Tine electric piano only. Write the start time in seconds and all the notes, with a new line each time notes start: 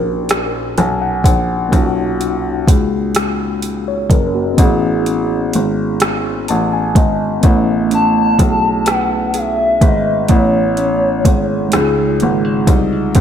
Already playing: A#3 C#4 D#4 F#4
0.78 G#5
1.02 F#5
1.25 F#5
1.69 A#3 C#4
1.75 D#4 F4
1.84 F#4
3.88 C#5
4.11 C#4 A#4
4.34 A#3 F#4
4.54 B3 C#4
4.60 E4 G#4
6.49 A5
6.73 G#5
6.97 D#5
7.41 B3 C#4
7.47 A3 E4
10.29 B3 C#4 E4
10.33 A3
11.69 G#3 D#4
11.75 F4 G#4